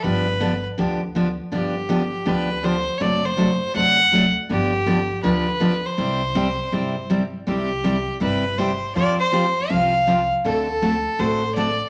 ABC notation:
X:1
M:4/4
L:1/16
Q:"Swing" 1/4=161
K:C
V:1 name="Fiddle"
B6 z8 z2 | G8 B4 c3- c/2 _d/2 | d2 c6 ^f6 z2 | G8 B6 c2- |
c12 z4 | G8 B4 c4 | d2 c6 f6 z2 | A8 c4 d4 |]
V:2 name="Steel-string acoustic guitar"
[D,F,B,DG]2 z2 [D,F,B,DG] z3 [D,F,B,DG]2 z2 [D,F,B,DG] z3 | [D,F,B,DG]2 z2 [D,F,B,DG] z3 [D,F,B,DG]2 z2 [D,F,B,DG] z3 | [C,^F,A,D^F]2 z2 [C,F,A,DF] z3 [C,F,A,DF]2 z2 [C,F,A,DF] z3 | [D,F,B,DG]2 z2 [D,F,B,DG] z3 [D,F,B,DG]2 z2 [D,F,B,DG] z3 |
[C,G,CEG]2 z2 [C,G,CEG] z3 [C,G,CEG]2 z2 [C,G,CEG] z3 | [C,G,CEG]2 z2 [C,G,CEG] z3 [C,G,CEG]2 z2 [C,G,CEG] z3 | [F,CFGc]2 z2 [F,CFGc] z3 [F,CFGc]2 z2 [F,CFGc] z3 | [D,A,C^FA]2 z2 [D,A,CFA] z3 [D,A,CFA]2 z2 [D,A,CFA] z3 |]
V:3 name="Upright bass" clef=bass
G,,,8 D,,8 | G,,,8 D,,8 | ^F,,,8 D,,8 | G,,,8 D,,8 |
C,,8 G,,,8 | C,,8 G,,,8 | F,,8 C,,8 | D,,8 A,,,8 |]